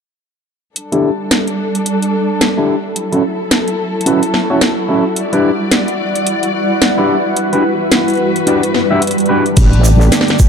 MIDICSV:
0, 0, Header, 1, 6, 480
1, 0, Start_track
1, 0, Tempo, 550459
1, 664, Time_signature, 4, 2, 24, 8
1, 9146, End_track
2, 0, Start_track
2, 0, Title_t, "Ambient pad"
2, 0, Program_c, 0, 92
2, 663, Note_on_c, 0, 69, 81
2, 880, Note_on_c, 0, 76, 65
2, 1536, Note_on_c, 0, 83, 81
2, 2587, Note_on_c, 0, 66, 79
2, 3133, Note_on_c, 0, 85, 76
2, 3308, Note_off_c, 0, 69, 0
2, 3359, Note_off_c, 0, 76, 0
2, 3361, Note_off_c, 0, 83, 0
2, 3468, Note_on_c, 0, 78, 75
2, 4508, Note_on_c, 0, 64, 82
2, 4942, Note_on_c, 0, 71, 71
2, 5214, Note_off_c, 0, 85, 0
2, 5283, Note_off_c, 0, 66, 0
2, 6425, Note_on_c, 0, 55, 66
2, 7047, Note_on_c, 0, 74, 78
2, 7137, Note_off_c, 0, 78, 0
2, 7203, Note_off_c, 0, 71, 0
2, 7204, Note_off_c, 0, 64, 0
2, 7316, Note_on_c, 0, 81, 84
2, 8344, Note_on_c, 0, 69, 70
2, 9005, Note_on_c, 0, 76, 82
2, 9122, Note_off_c, 0, 55, 0
2, 9123, Note_off_c, 0, 74, 0
2, 9126, Note_off_c, 0, 81, 0
2, 9146, Note_off_c, 0, 69, 0
2, 9146, Note_off_c, 0, 76, 0
2, 9146, End_track
3, 0, Start_track
3, 0, Title_t, "Clean electric guitar"
3, 0, Program_c, 1, 27
3, 803, Note_on_c, 1, 64, 80
3, 806, Note_on_c, 1, 69, 91
3, 810, Note_on_c, 1, 67, 78
3, 814, Note_on_c, 1, 62, 76
3, 951, Note_off_c, 1, 62, 0
3, 951, Note_off_c, 1, 67, 0
3, 951, Note_off_c, 1, 69, 0
3, 952, Note_off_c, 1, 64, 0
3, 2244, Note_on_c, 1, 64, 56
3, 2247, Note_on_c, 1, 69, 75
3, 2252, Note_on_c, 1, 67, 49
3, 2256, Note_on_c, 1, 62, 61
3, 2392, Note_off_c, 1, 62, 0
3, 2392, Note_off_c, 1, 64, 0
3, 2392, Note_off_c, 1, 67, 0
3, 2392, Note_off_c, 1, 69, 0
3, 2722, Note_on_c, 1, 64, 63
3, 2728, Note_on_c, 1, 69, 74
3, 2732, Note_on_c, 1, 66, 60
3, 2738, Note_on_c, 1, 61, 64
3, 2808, Note_off_c, 1, 61, 0
3, 2808, Note_off_c, 1, 64, 0
3, 2808, Note_off_c, 1, 66, 0
3, 2808, Note_off_c, 1, 69, 0
3, 3540, Note_on_c, 1, 61, 74
3, 3544, Note_on_c, 1, 66, 68
3, 3550, Note_on_c, 1, 71, 90
3, 3554, Note_on_c, 1, 64, 57
3, 3664, Note_off_c, 1, 61, 0
3, 3664, Note_off_c, 1, 64, 0
3, 3664, Note_off_c, 1, 66, 0
3, 3664, Note_off_c, 1, 71, 0
3, 3925, Note_on_c, 1, 73, 92
3, 3929, Note_on_c, 1, 66, 72
3, 3932, Note_on_c, 1, 64, 69
3, 3936, Note_on_c, 1, 61, 65
3, 4008, Note_off_c, 1, 61, 0
3, 4008, Note_off_c, 1, 64, 0
3, 4008, Note_off_c, 1, 73, 0
3, 4009, Note_off_c, 1, 66, 0
3, 4260, Note_on_c, 1, 64, 68
3, 4265, Note_on_c, 1, 69, 86
3, 4268, Note_on_c, 1, 66, 59
3, 4273, Note_on_c, 1, 61, 61
3, 4384, Note_off_c, 1, 64, 0
3, 4384, Note_off_c, 1, 66, 0
3, 4384, Note_off_c, 1, 69, 0
3, 4385, Note_off_c, 1, 61, 0
3, 4645, Note_on_c, 1, 64, 85
3, 4650, Note_on_c, 1, 71, 104
3, 4654, Note_on_c, 1, 67, 77
3, 4659, Note_on_c, 1, 62, 82
3, 4793, Note_off_c, 1, 62, 0
3, 4793, Note_off_c, 1, 64, 0
3, 4793, Note_off_c, 1, 67, 0
3, 4793, Note_off_c, 1, 71, 0
3, 6084, Note_on_c, 1, 64, 63
3, 6089, Note_on_c, 1, 71, 76
3, 6094, Note_on_c, 1, 67, 59
3, 6100, Note_on_c, 1, 62, 59
3, 6233, Note_off_c, 1, 62, 0
3, 6233, Note_off_c, 1, 64, 0
3, 6233, Note_off_c, 1, 67, 0
3, 6233, Note_off_c, 1, 71, 0
3, 6565, Note_on_c, 1, 71, 74
3, 6570, Note_on_c, 1, 67, 63
3, 6575, Note_on_c, 1, 66, 61
3, 6580, Note_on_c, 1, 62, 66
3, 6649, Note_off_c, 1, 62, 0
3, 6649, Note_off_c, 1, 66, 0
3, 6649, Note_off_c, 1, 67, 0
3, 6649, Note_off_c, 1, 71, 0
3, 7382, Note_on_c, 1, 62, 75
3, 7386, Note_on_c, 1, 66, 72
3, 7390, Note_on_c, 1, 67, 66
3, 7394, Note_on_c, 1, 74, 74
3, 7504, Note_off_c, 1, 74, 0
3, 7505, Note_off_c, 1, 62, 0
3, 7505, Note_off_c, 1, 66, 0
3, 7505, Note_off_c, 1, 67, 0
3, 7766, Note_on_c, 1, 76, 90
3, 7771, Note_on_c, 1, 67, 75
3, 7773, Note_on_c, 1, 66, 68
3, 7778, Note_on_c, 1, 62, 74
3, 7849, Note_off_c, 1, 62, 0
3, 7849, Note_off_c, 1, 66, 0
3, 7849, Note_off_c, 1, 67, 0
3, 7849, Note_off_c, 1, 76, 0
3, 8101, Note_on_c, 1, 71, 78
3, 8105, Note_on_c, 1, 67, 71
3, 8109, Note_on_c, 1, 66, 61
3, 8114, Note_on_c, 1, 62, 67
3, 8224, Note_off_c, 1, 66, 0
3, 8224, Note_off_c, 1, 67, 0
3, 8224, Note_off_c, 1, 71, 0
3, 8225, Note_off_c, 1, 62, 0
3, 9146, End_track
4, 0, Start_track
4, 0, Title_t, "String section"
4, 0, Program_c, 2, 48
4, 664, Note_on_c, 2, 62, 68
4, 664, Note_on_c, 2, 69, 81
4, 665, Note_on_c, 2, 55, 72
4, 2565, Note_off_c, 2, 55, 0
4, 2565, Note_off_c, 2, 62, 0
4, 2565, Note_off_c, 2, 69, 0
4, 2582, Note_on_c, 2, 64, 67
4, 2583, Note_on_c, 2, 54, 74
4, 2583, Note_on_c, 2, 69, 83
4, 4484, Note_off_c, 2, 54, 0
4, 4485, Note_off_c, 2, 69, 0
4, 4506, Note_on_c, 2, 55, 76
4, 4506, Note_on_c, 2, 74, 80
4, 6388, Note_off_c, 2, 64, 0
4, 6406, Note_off_c, 2, 74, 0
4, 6426, Note_on_c, 2, 71, 84
4, 6427, Note_on_c, 2, 66, 71
4, 8310, Note_off_c, 2, 55, 0
4, 8326, Note_off_c, 2, 71, 0
4, 8327, Note_off_c, 2, 66, 0
4, 8345, Note_on_c, 2, 50, 74
4, 8345, Note_on_c, 2, 57, 76
4, 8346, Note_on_c, 2, 67, 85
4, 9146, Note_off_c, 2, 50, 0
4, 9146, Note_off_c, 2, 57, 0
4, 9146, Note_off_c, 2, 67, 0
4, 9146, End_track
5, 0, Start_track
5, 0, Title_t, "Wobble bass"
5, 0, Program_c, 3, 39
5, 8345, Note_on_c, 3, 33, 97
5, 8809, Note_off_c, 3, 33, 0
5, 9146, End_track
6, 0, Start_track
6, 0, Title_t, "Drums"
6, 663, Note_on_c, 9, 42, 71
6, 750, Note_off_c, 9, 42, 0
6, 806, Note_on_c, 9, 42, 36
6, 893, Note_off_c, 9, 42, 0
6, 1143, Note_on_c, 9, 38, 111
6, 1143, Note_on_c, 9, 42, 72
6, 1230, Note_off_c, 9, 38, 0
6, 1230, Note_off_c, 9, 42, 0
6, 1286, Note_on_c, 9, 42, 33
6, 1374, Note_off_c, 9, 42, 0
6, 1526, Note_on_c, 9, 42, 53
6, 1613, Note_off_c, 9, 42, 0
6, 1622, Note_on_c, 9, 42, 75
6, 1709, Note_off_c, 9, 42, 0
6, 1766, Note_on_c, 9, 42, 48
6, 1853, Note_off_c, 9, 42, 0
6, 2102, Note_on_c, 9, 38, 104
6, 2102, Note_on_c, 9, 42, 75
6, 2190, Note_off_c, 9, 38, 0
6, 2190, Note_off_c, 9, 42, 0
6, 2581, Note_on_c, 9, 42, 77
6, 2668, Note_off_c, 9, 42, 0
6, 2726, Note_on_c, 9, 42, 36
6, 2813, Note_off_c, 9, 42, 0
6, 3062, Note_on_c, 9, 38, 109
6, 3062, Note_on_c, 9, 42, 78
6, 3150, Note_off_c, 9, 38, 0
6, 3150, Note_off_c, 9, 42, 0
6, 3206, Note_on_c, 9, 42, 34
6, 3293, Note_off_c, 9, 42, 0
6, 3495, Note_on_c, 9, 42, 54
6, 3543, Note_off_c, 9, 42, 0
6, 3543, Note_on_c, 9, 42, 74
6, 3630, Note_off_c, 9, 42, 0
6, 3686, Note_on_c, 9, 42, 52
6, 3773, Note_off_c, 9, 42, 0
6, 3783, Note_on_c, 9, 38, 58
6, 3870, Note_off_c, 9, 38, 0
6, 4023, Note_on_c, 9, 38, 113
6, 4023, Note_on_c, 9, 42, 71
6, 4110, Note_off_c, 9, 38, 0
6, 4110, Note_off_c, 9, 42, 0
6, 4503, Note_on_c, 9, 42, 77
6, 4590, Note_off_c, 9, 42, 0
6, 4646, Note_on_c, 9, 42, 34
6, 4734, Note_off_c, 9, 42, 0
6, 4983, Note_on_c, 9, 38, 114
6, 4983, Note_on_c, 9, 42, 77
6, 5071, Note_off_c, 9, 38, 0
6, 5071, Note_off_c, 9, 42, 0
6, 5128, Note_on_c, 9, 42, 35
6, 5215, Note_off_c, 9, 42, 0
6, 5367, Note_on_c, 9, 42, 51
6, 5454, Note_off_c, 9, 42, 0
6, 5464, Note_on_c, 9, 42, 75
6, 5551, Note_off_c, 9, 42, 0
6, 5607, Note_on_c, 9, 42, 49
6, 5694, Note_off_c, 9, 42, 0
6, 5944, Note_on_c, 9, 38, 116
6, 5944, Note_on_c, 9, 42, 74
6, 6031, Note_off_c, 9, 38, 0
6, 6031, Note_off_c, 9, 42, 0
6, 6422, Note_on_c, 9, 42, 74
6, 6509, Note_off_c, 9, 42, 0
6, 6565, Note_on_c, 9, 42, 34
6, 6652, Note_off_c, 9, 42, 0
6, 6902, Note_on_c, 9, 38, 119
6, 6902, Note_on_c, 9, 42, 77
6, 6989, Note_off_c, 9, 38, 0
6, 6989, Note_off_c, 9, 42, 0
6, 7047, Note_on_c, 9, 42, 31
6, 7062, Note_off_c, 9, 42, 0
6, 7062, Note_on_c, 9, 42, 27
6, 7094, Note_off_c, 9, 42, 0
6, 7094, Note_on_c, 9, 42, 17
6, 7110, Note_off_c, 9, 42, 0
6, 7110, Note_on_c, 9, 42, 14
6, 7127, Note_off_c, 9, 42, 0
6, 7127, Note_on_c, 9, 42, 12
6, 7214, Note_off_c, 9, 42, 0
6, 7289, Note_on_c, 9, 42, 49
6, 7376, Note_off_c, 9, 42, 0
6, 7385, Note_on_c, 9, 42, 70
6, 7472, Note_off_c, 9, 42, 0
6, 7529, Note_on_c, 9, 42, 51
6, 7616, Note_off_c, 9, 42, 0
6, 7625, Note_on_c, 9, 38, 60
6, 7712, Note_off_c, 9, 38, 0
6, 7865, Note_on_c, 9, 42, 69
6, 7912, Note_off_c, 9, 42, 0
6, 7912, Note_on_c, 9, 42, 59
6, 7943, Note_off_c, 9, 42, 0
6, 7943, Note_on_c, 9, 42, 46
6, 8007, Note_off_c, 9, 42, 0
6, 8007, Note_on_c, 9, 42, 36
6, 8024, Note_off_c, 9, 42, 0
6, 8024, Note_on_c, 9, 42, 31
6, 8072, Note_off_c, 9, 42, 0
6, 8072, Note_on_c, 9, 42, 26
6, 8159, Note_off_c, 9, 42, 0
6, 8248, Note_on_c, 9, 42, 35
6, 8335, Note_off_c, 9, 42, 0
6, 8343, Note_on_c, 9, 42, 81
6, 8343, Note_on_c, 9, 49, 93
6, 8345, Note_on_c, 9, 36, 109
6, 8345, Note_on_c, 9, 82, 53
6, 8430, Note_off_c, 9, 42, 0
6, 8430, Note_off_c, 9, 49, 0
6, 8432, Note_off_c, 9, 82, 0
6, 8433, Note_off_c, 9, 36, 0
6, 8487, Note_on_c, 9, 42, 37
6, 8574, Note_off_c, 9, 42, 0
6, 8583, Note_on_c, 9, 82, 97
6, 8670, Note_off_c, 9, 82, 0
6, 8728, Note_on_c, 9, 37, 41
6, 8729, Note_on_c, 9, 82, 40
6, 8815, Note_off_c, 9, 37, 0
6, 8816, Note_off_c, 9, 82, 0
6, 8824, Note_on_c, 9, 38, 107
6, 8824, Note_on_c, 9, 42, 82
6, 8826, Note_on_c, 9, 82, 54
6, 8903, Note_off_c, 9, 38, 0
6, 8903, Note_on_c, 9, 38, 91
6, 8912, Note_off_c, 9, 42, 0
6, 8913, Note_off_c, 9, 82, 0
6, 8966, Note_on_c, 9, 42, 37
6, 8983, Note_off_c, 9, 38, 0
6, 8983, Note_on_c, 9, 38, 72
6, 9054, Note_off_c, 9, 42, 0
6, 9061, Note_on_c, 9, 82, 90
6, 9066, Note_on_c, 9, 36, 101
6, 9070, Note_off_c, 9, 38, 0
6, 9146, Note_off_c, 9, 36, 0
6, 9146, Note_off_c, 9, 82, 0
6, 9146, End_track
0, 0, End_of_file